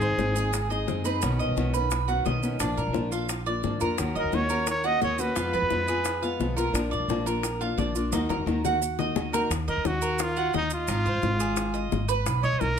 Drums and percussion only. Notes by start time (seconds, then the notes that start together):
0.01 high bongo, maracas
0.19 high bongo, maracas
0.36 maracas
0.53 high bongo, maracas
0.71 high bongo, maracas
0.88 high bongo, low bongo, maracas
1.05 high bongo, maracas
1.22 high bongo, maracas
1.40 high bongo, maracas
1.57 high bongo, maracas
1.74 maracas
1.91 high bongo, maracas
2.08 high bongo, maracas
2.25 high bongo, low bongo, maracas
2.43 high bongo, maracas
2.60 high bongo, maracas
2.77 high bongo, maracas
2.94 high bongo, maracas
3.12 maracas
3.29 high bongo, maracas
3.46 high bongo, maracas
3.63 high bongo, low bongo, maracas
3.80 high bongo, maracas
3.98 high bongo, maracas
4.16 high bongo, maracas
4.32 high bongo, maracas
4.49 maracas
4.67 high bongo, maracas
4.84 high bongo, maracas
5.01 high bongo, low bongo, maracas
5.18 high bongo, maracas
5.36 high bongo, maracas
5.54 high bongo, maracas
5.70 high bongo, maracas
5.88 maracas
6.05 high bongo, maracas
6.23 high bongo, maracas
6.40 high bongo, low bongo, maracas
6.58 high bongo, maracas
6.75 high bongo, maracas
6.93 high bongo, maracas
7.09 high bongo, maracas
7.27 maracas
7.43 high bongo, maracas
7.61 high bongo, maracas
7.78 high bongo, low bongo, maracas
7.95 high bongo, maracas
8.12 high bongo, maracas
8.30 high bongo, maracas
8.47 high bongo, maracas
8.65 low bongo, maracas
8.82 maracas
8.99 low bongo, maracas
9.16 low bongo, maracas
9.34 low bongo, maracas
9.51 high bongo, maracas
9.68 high bongo, maracas
9.85 high bongo, maracas
10.02 maracas
10.19 high bongo, maracas
10.36 high bongo, maracas
10.53 high bongo, low bongo, maracas
10.70 high bongo, maracas
10.88 high bongo, maracas
11.06 high bongo, maracas
11.22 high bongo, maracas
11.40 maracas
11.56 high bongo, maracas
11.74 high bongo, maracas
11.92 high bongo, low bongo, maracas
12.09 high bongo, maracas
12.26 high bongo, maracas
12.44 high bongo, maracas
12.61 high bongo, maracas